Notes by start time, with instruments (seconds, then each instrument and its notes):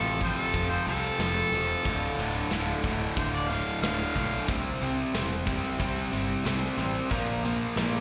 Already playing: fingered electric bass A1, overdriven electric guitar F2 C3 F3, twelve-string acoustic guitar F3 C4 F4 A4, harmonica A4
0.19 overdriven electric guitar F2, twelve-string acoustic guitar F4 A4, harmonica C5, kick, closed hi-hat
0.24 overdriven electric guitar C3 F3
0.38 harmonica A4
0.52 fingered electric bass F1, overdriven electric guitar F2 C3, twelve-string acoustic guitar F3 C4 F4 A4, kick, closed hi-hat
0.57 overdriven electric guitar F3
0.69 harmonica C5
0.86 fingered electric bass C2, overdriven electric guitar F2 C3 F3, twelve-string acoustic guitar C4 F4 A4, harmonica A4, closed hi-hat
1.19 fingered electric bass F1, overdriven electric guitar F2 C3 F3, snare, closed hi-hat
1.52 fingered electric bass E1, overdriven electric guitar F2 C3 F3, twelve-string acoustic guitar C4 F4 A4, closed hi-hat
1.85 fingered electric bass D1, overdriven electric guitar D2 A2 D3, twelve-string acoustic guitar D3 F3 D4 F4 A4, kick, closed hi-hat
2.18 fingered electric bass D1, overdriven electric guitar D2 A2 D3, closed hi-hat
2.49 fingered electric bass D1, overdriven electric guitar D2 A2 D3, twelve-string acoustic guitar F3 D4 F4, snare, closed hi-hat
2.82 fingered electric bass D1, overdriven electric guitar D2 A2 D3, twelve-string acoustic guitar D4 F4 A4, kick, closed hi-hat
3.16 fingered electric bass D1, overdriven electric guitar D2 A2 D3, twelve-string acoustic guitar F3 D4 F4, harmonica C5, kick, closed hi-hat
3.32 harmonica D5
3.48 overdriven electric guitar D2 A2 D3, twelve-string acoustic guitar D4 F4 A4, harmonica F5, closed hi-hat
3.82 fingered electric bass D1, overdriven electric guitar D2 A2 D3, harmonica F5, snare, closed hi-hat
4.14 fingered electric bass B1, overdriven electric guitar D2 A2 D3, twelve-string acoustic guitar D4 A4, kick, closed hi-hat
4.47 fingered electric bass C2, twelve-string acoustic guitar C3 G3 C4 E4 C5, overdriven electric guitar C3 G3 C4, kick, closed hi-hat
4.81 fingered electric bass C2, overdriven electric guitar C3 G3 C4, closed hi-hat
5.13 fingered electric bass E1, overdriven electric guitar C3 G3 C4, twelve-string acoustic guitar G3 C4 E4 C5, snare, closed hi-hat
5.45 overdriven electric guitar C3 G3 C4, twelve-string acoustic guitar C4 E4 C5, kick, closed hi-hat
5.64 snare
5.78 fingered electric bass C2, overdriven electric guitar C3 G3 C4, twelve-string acoustic guitar G3 C4 E4 C5, kick, closed hi-hat
5.97 snare
6.11 fingered electric bass G1, overdriven electric guitar C3 G3 C4, twelve-string acoustic guitar C4 E4 C5, closed hi-hat
6.45 fingered electric bass C2, overdriven electric guitar C3 G3 C4, snare, closed hi-hat
6.76 fingered electric bass A1, overdriven electric guitar C3 G3 C4, twelve-string acoustic guitar C4 E4 C5, closed hi-hat
7.10 fingered electric bass A#1, overdriven electric guitar A#2 F3 A#3, twelve-string acoustic guitar A#2 D3 F3 A#3 D4 A#4, kick, closed hi-hat
7.43 fingered electric bass A#1, overdriven electric guitar A#2 F3 A#3, closed hi-hat
7.74 fingered electric bass A#1, overdriven electric guitar A#2 F3 A#3, twelve-string acoustic guitar F3 A#3 D4 A#4, snare, closed hi-hat